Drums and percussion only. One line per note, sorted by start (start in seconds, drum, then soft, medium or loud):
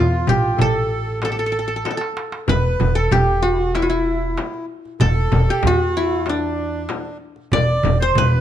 0.12 darbuka ka soft
0.27 frame drum medium
0.27 darbuka dum medium
0.59 frame drum medium
0.59 darbuka dum medium
0.91 darbuka ka soft
1.22 darbuka tek medium
1.22 frame drum medium
1.85 darbuka tek soft
1.85 frame drum medium
2.01 darbuka ka medium
2.17 darbuka tek medium
2.32 darbuka ka medium
2.48 frame drum medium
2.48 darbuka dum medium
2.64 darbuka ka soft
2.80 darbuka dum medium
2.80 frame drum medium
3.12 darbuka dum medium
3.12 frame drum medium
3.27 darbuka ka soft
3.75 darbuka tek medium
3.75 frame drum medium
4.06 darbuka ka soft
4.37 darbuka tek medium
4.37 frame drum medium
4.54 darbuka ka soft
4.85 darbuka ka soft
5.00 darbuka dum medium
5.00 frame drum medium
5.16 darbuka ka soft
5.32 darbuka dum medium
5.32 frame drum medium
5.63 frame drum medium
5.63 darbuka dum medium
6.26 darbuka tek medium
6.26 frame drum medium
6.58 darbuka ka soft
6.89 darbuka tek medium
6.89 frame drum medium
7.05 darbuka ka soft
7.36 darbuka ka soft
7.52 darbuka dum medium
7.52 frame drum loud
7.68 darbuka ka soft
7.83 darbuka dum medium
7.83 frame drum medium
8.15 darbuka dum loud
8.15 frame drum medium
8.31 darbuka ka soft